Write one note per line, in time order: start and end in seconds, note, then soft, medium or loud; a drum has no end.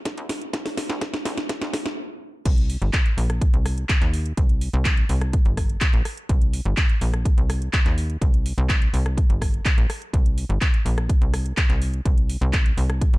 0.05 kick loud
0.05 snare medium
0.05 closed hi-hat medium
0.17 0.49 D#2 loud
0.17 closed hi-hat soft
0.29 snare medium
0.29 open hi-hat loud
0.41 closed hi-hat soft
0.53 0.85 C2 medium
0.53 kick loud
0.53 snare medium
0.53 closed hi-hat medium
0.66 snare medium
0.66 open hi-hat medium
0.77 snare loud
0.77 open hi-hat loud
0.89 1.21 C2 loud
0.89 snare medium
0.89 closed hi-hat soft
1.01 kick loud
1.01 snare medium
1.01 closed hi-hat medium
1.14 snare medium
1.14 closed hi-hat soft
1.25 1.57 C2 loud
1.25 snare loud
1.25 open hi-hat loud
1.37 snare medium
1.37 closed hi-hat soft
1.49 kick loud
1.49 snare loud
1.49 closed hi-hat medium
1.61 1.93 F2 loud
1.61 snare medium
1.61 closed hi-hat soft
1.73 kick medium
1.73 snare loud
1.73 open hi-hat loud
1.86 snare medium
1.86 closed hi-hat soft
2.45 2.77 C2 loud
2.45 kick loud
2.45 closed hi-hat loud
2.45 crash loud
2.58 closed hi-hat soft
2.70 open hi-hat loud
2.82 2.91 G1 medium
2.82 closed hi-hat soft
2.93 kick loud
2.93 clap loud
2.93 closed hi-hat medium
3.06 closed hi-hat soft
3.17 3.49 A#1 loud
3.17 open hi-hat loud
3.30 cross-stick medium
3.30 closed hi-hat soft
3.41 kick loud
3.41 closed hi-hat loud
3.54 3.85 C2 medium
3.54 closed hi-hat soft
3.66 cross-stick medium
3.66 open hi-hat loud
3.78 closed hi-hat soft
3.89 kick loud
3.89 clap loud
3.89 closed hi-hat loud
4.01 4.33 D#2 loud
4.01 clap soft
4.01 closed hi-hat soft
4.13 open hi-hat loud
4.26 closed hi-hat soft
4.37 4.69 C2 loud
4.37 kick loud
4.37 closed hi-hat medium
4.49 closed hi-hat soft
4.61 open hi-hat loud
4.73 5.05 C2 loud
4.73 closed hi-hat soft
4.85 kick loud
4.85 clap loud
4.85 closed hi-hat medium
4.97 closed hi-hat soft
5.09 5.41 C2 loud
5.09 open hi-hat loud
5.21 cross-stick medium
5.21 closed hi-hat soft
5.33 kick loud
5.33 closed hi-hat medium
5.45 5.77 G1 medium
5.45 closed hi-hat soft
5.57 kick medium
5.57 cross-stick medium
5.57 open hi-hat loud
5.69 closed hi-hat soft
5.81 kick loud
5.81 clap loud
5.81 closed hi-hat medium
5.93 6.03 A#1 medium
5.93 closed hi-hat soft
6.05 cross-stick medium
6.05 open hi-hat loud
6.17 closed hi-hat soft
6.29 6.61 C2 loud
6.29 kick loud
6.29 closed hi-hat medium
6.42 closed hi-hat soft
6.53 open hi-hat loud
6.65 6.75 G1 medium
6.65 closed hi-hat soft
6.77 kick loud
6.77 clap loud
6.77 closed hi-hat medium
6.89 closed hi-hat soft
7.01 7.33 A#1 loud
7.01 open hi-hat loud
7.14 cross-stick medium
7.14 closed hi-hat soft
7.25 kick loud
7.25 closed hi-hat medium
7.38 7.69 C2 medium
7.38 closed hi-hat soft
7.50 cross-stick medium
7.50 open hi-hat loud
7.62 closed hi-hat soft
7.73 kick loud
7.73 clap loud
7.73 closed hi-hat medium
7.85 8.17 D#2 loud
7.85 clap soft
7.85 closed hi-hat soft
7.98 open hi-hat loud
8.10 closed hi-hat soft
8.21 8.53 C2 medium
8.21 kick loud
8.21 closed hi-hat medium
8.34 closed hi-hat soft
8.46 open hi-hat loud
8.58 8.89 C2 loud
8.58 closed hi-hat soft
8.69 kick loud
8.69 clap loud
8.69 closed hi-hat medium
8.82 closed hi-hat soft
8.94 9.25 C2 loud
8.94 open hi-hat loud
9.06 cross-stick medium
9.06 closed hi-hat soft
9.18 kick loud
9.18 closed hi-hat medium
9.30 9.61 G1 medium
9.30 closed hi-hat soft
9.41 kick medium
9.41 cross-stick medium
9.41 open hi-hat loud
9.54 closed hi-hat soft
9.65 kick loud
9.65 clap loud
9.65 closed hi-hat medium
9.78 9.87 A#1 medium
9.78 closed hi-hat soft
9.90 cross-stick medium
9.90 open hi-hat loud
10.02 closed hi-hat soft
10.13 10.45 C2 loud
10.13 kick loud
10.13 closed hi-hat medium
10.26 closed hi-hat soft
10.38 open hi-hat loud
10.50 10.59 G1 medium
10.50 closed hi-hat soft
10.61 kick loud
10.61 clap loud
10.61 closed hi-hat medium
10.74 closed hi-hat soft
10.85 11.17 A#1 loud
10.85 open hi-hat loud
10.98 cross-stick medium
10.98 closed hi-hat soft
11.09 kick loud
11.09 closed hi-hat medium
11.21 11.53 C2 medium
11.21 closed hi-hat soft
11.34 cross-stick medium
11.34 open hi-hat loud
11.46 closed hi-hat soft
11.57 kick loud
11.57 clap loud
11.57 closed hi-hat medium
11.69 12.01 C2 loud
11.69 clap soft
11.69 closed hi-hat soft
11.82 open hi-hat loud
11.94 closed hi-hat soft
12.05 12.37 C2 medium
12.05 kick loud
12.05 closed hi-hat medium
12.18 closed hi-hat soft
12.29 open hi-hat loud
12.41 12.73 C2 loud
12.41 closed hi-hat soft
12.53 kick loud
12.53 clap loud
12.53 closed hi-hat medium
12.66 closed hi-hat soft
12.77 13.09 C2 loud
12.77 open hi-hat loud
12.90 cross-stick medium
12.90 closed hi-hat soft
13.01 kick loud
13.01 closed hi-hat medium
13.13 13.18 G1 medium
13.13 closed hi-hat soft